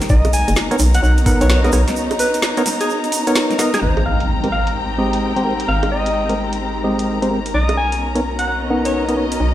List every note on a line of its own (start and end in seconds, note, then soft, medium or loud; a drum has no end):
0.00 1.41 G#3 medium
0.00 0.10 C4 medium
0.00 3.78 D#4 medium
0.00 9.54 A#5 medium
0.00 snare soft
0.00 closed hi-hat medium
0.00 shaker soft
0.09 0.44 B1 loud
0.09 3.82 B3 medium
0.09 3.78 C#4 medium
0.09 3.78 F#4 medium
0.09 3.78 A#4 medium
0.09 0.32 D#5 medium
0.09 kick loud
0.09 shaker soft
0.25 closed hi-hat medium
0.25 high bongo medium
0.25 shaker soft
0.33 0.52 G#5 medium
0.33 open hi-hat loud
0.33 shaker medium
0.48 0.55 F#1 loud
0.48 5.32 D#4 medium
0.48 closed hi-hat medium
0.48 shaker soft
0.56 snare loud
0.56 shaker soft
0.71 0.76 B3 medium
0.71 0.76 D#4 medium
0.71 0.76 A#4 medium
0.71 0.76 C#5 loud
0.71 closed hi-hat medium
0.71 shaker soft
0.76 1.00 B1 medium
0.76 3.82 C#5 medium
0.76 open hi-hat loud
0.76 shaker medium
0.94 1.00 F#5 medium
0.94 closed hi-hat medium
0.94 shaker soft
1.03 1.37 B1 medium
1.03 1.13 F#5 medium
1.03 shaker soft
1.18 closed hi-hat soft
1.18 shaker soft
1.26 1.61 B3 loud
1.26 1.61 D#4 medium
1.26 1.61 A#4 medium
1.26 1.61 F#5 loud
1.26 kick loud
1.26 open hi-hat loud
1.26 shaker medium
1.41 1.70 B1 loud
1.41 1.47 C#5 medium
1.41 closed hi-hat medium
1.41 shaker soft
1.50 1.59 C#5 medium
1.50 snare loud
1.50 shaker soft
1.64 1.71 B3 medium
1.64 1.71 D#4 medium
1.64 1.71 A#4 medium
1.64 1.71 D#5 medium
1.64 snare soft
1.64 closed hi-hat soft
1.64 high bongo medium
1.64 shaker soft
1.72 1.85 B1 medium
1.72 1.82 B3 medium
1.72 1.82 D#4 medium
1.72 1.82 A#4 medium
1.72 1.82 C#5 medium
1.72 open hi-hat loud
1.72 high bongo medium
1.72 shaker medium
1.88 snare medium
1.88 closed hi-hat medium
1.88 shaker soft
1.96 shaker medium
2.11 closed hi-hat medium
2.11 high bongo medium
2.11 shaker soft
2.19 2.39 B4 medium
2.19 open hi-hat loud
2.19 shaker medium
2.34 closed hi-hat medium
2.34 shaker soft
2.42 snare loud
2.42 shaker soft
2.57 2.62 B3 medium
2.57 2.62 D#4 medium
2.57 2.62 A#4 medium
2.57 2.62 C#5 loud
2.57 closed hi-hat medium
2.57 shaker soft
2.66 snare soft
2.66 open hi-hat loud
2.66 shaker medium
2.81 2.97 G#4 medium
2.81 closed hi-hat medium
2.81 shaker soft
2.90 shaker soft
3.04 closed hi-hat soft
3.04 shaker soft
3.12 open hi-hat loud
3.12 shaker medium
3.27 3.57 B3 medium
3.27 3.57 D#4 medium
3.27 3.57 A#4 medium
3.27 3.57 C#5 medium
3.27 closed hi-hat medium
3.27 shaker soft
3.36 snare loud
3.36 open hi-hat medium
3.36 shaker medium
3.51 snare soft
3.51 closed hi-hat soft
3.51 shaker soft
3.59 3.73 B3 medium
3.59 3.73 D#4 medium
3.59 3.73 A#4 medium
3.59 3.73 D#5 medium
3.59 snare medium
3.59 open hi-hat loud
3.59 shaker medium
3.74 3.82 G#4 medium
3.74 snare medium
3.74 closed hi-hat medium
3.74 shaker soft
3.82 5.66 G#1 medium
3.82 7.54 C4 medium
3.82 7.51 C4 medium
3.82 7.51 D#4 medium
3.82 7.51 G4 medium
3.82 9.54 A#4 medium
3.82 4.04 C5 medium
3.82 impact medium
3.96 7.54 G5 medium
3.96 closed hi-hat soft
3.96 high bongo medium
4.06 9.06 G#3 medium
4.06 4.25 F5 medium
4.20 closed hi-hat medium
4.43 4.49 G#3 medium
4.43 4.49 C4 medium
4.43 4.49 G4 medium
4.43 4.49 A#4 loud
4.43 closed hi-hat soft
4.52 4.71 F5 medium
4.67 closed hi-hat medium
4.98 5.33 G#3 medium
4.98 5.33 C4 medium
4.98 5.33 G4 medium
4.98 5.33 D#5 loud
5.13 closed hi-hat medium
5.36 5.44 G#3 medium
5.36 5.44 C4 medium
5.36 5.44 G4 medium
5.36 5.44 C5 medium
5.36 closed hi-hat soft
5.45 5.54 G#3 medium
5.45 5.54 C4 medium
5.45 5.54 G4 medium
5.45 5.54 A#4 medium
5.60 closed hi-hat medium
5.68 7.52 G#1 medium
5.68 5.87 F5 medium
5.83 closed hi-hat soft
5.83 high bongo medium
5.92 6.38 D#5 medium
6.06 closed hi-hat medium
6.29 6.34 G#3 medium
6.29 6.34 C4 medium
6.29 6.34 G4 medium
6.29 6.34 A#4 loud
6.29 closed hi-hat soft
6.53 closed hi-hat medium
6.84 7.19 G#3 medium
6.84 7.19 C4 medium
6.84 7.19 G4 medium
6.84 7.19 D#5 loud
6.99 closed hi-hat medium
7.22 7.30 G#3 medium
7.22 7.30 C4 medium
7.22 7.29 G4 medium
7.22 7.30 C5 medium
7.22 closed hi-hat soft
7.31 7.40 G#3 medium
7.31 7.40 C4 medium
7.31 7.40 G4 medium
7.31 7.40 A#4 medium
7.46 closed hi-hat medium
7.54 9.38 B1 medium
7.54 9.54 C#4 medium
7.54 9.54 D#4 medium
7.54 9.54 F#4 medium
7.54 7.76 D#5 medium
7.69 closed hi-hat soft
7.69 high bongo medium
7.75 9.54 B3 medium
7.75 7.97 G#5 medium
7.92 closed hi-hat medium
8.15 8.20 B3 medium
8.15 8.20 D#4 medium
8.15 8.20 A#4 medium
8.15 8.20 C#5 loud
8.15 closed hi-hat soft
8.39 8.44 F#5 medium
8.39 closed hi-hat medium
8.47 8.57 F#5 medium
8.54 9.54 D#5 medium
8.70 9.05 B3 medium
8.70 9.05 D#4 medium
8.70 9.05 A#4 medium
8.70 9.05 F#5 loud
8.85 8.91 C#5 medium
8.85 closed hi-hat medium
8.94 9.03 C#5 medium
9.08 9.16 B3 medium
9.08 9.16 D#4 medium
9.08 9.16 A#4 medium
9.08 9.16 D#5 loud
9.08 closed hi-hat soft
9.17 9.26 B3 medium
9.17 9.26 D#4 medium
9.17 9.26 A#4 medium
9.17 9.26 C#5 medium
9.32 closed hi-hat medium
9.40 9.54 B1 medium